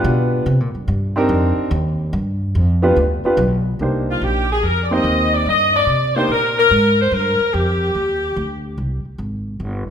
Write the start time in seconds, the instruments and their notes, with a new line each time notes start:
Already playing: upright piano B3 D4 F4 G4 B4
0.04 upright bass B2
0.46 upright bass C3
0.60 upright bass A#2
0.74 upright bass G2
0.88 upright bass G2
1.16 upright piano C4 D4 D#4 G4 A#4
1.29 upright bass F2
1.57 muted upright bass stroke
1.71 upright bass D#2
2.13 upright bass G2
2.55 upright bass F2
2.82 upright piano B3 D4 F4 G4 B4
2.96 upright bass D2
3.24 upright piano B3 D4 F4 G4 B4, muted upright bass stroke
3.37 upright bass B1
3.79 upright bass C2, upright piano A#3 D4 D#4 G4 C5
4.10 saxophone section F4
4.21 upright bass A#1, saxophone section G4
4.52 saxophone section G#4
4.63 upright bass F2, saxophone section A#4
4.83 saxophone section D5
4.91 upright piano A#3 C4 D#4 G4 C5, saxophone section D#5
5.04 upright bass D#2
5.35 saxophone section D5
5.46 upright bass G2, saxophone section D#5
5.76 saxophone section D5
5.87 upright bass C3
6.16 upright piano A#3 D4 D#4 G4 C5, saxophone section C5
6.29 upright bass A#2, saxophone section A#4
6.58 saxophone section A#4
6.71 upright bass G#2
7.01 saxophone section C5
7.12 upright bass G2, saxophone section A#4
7.40 muted upright bass stroke
7.54 upright bass F2, saxophone section G4
7.95 upright bass D#2
8.36 upright bass D2
8.78 upright bass C2
9.05 muted upright bass stroke
9.18 upright bass G#1
9.60 upright bass G1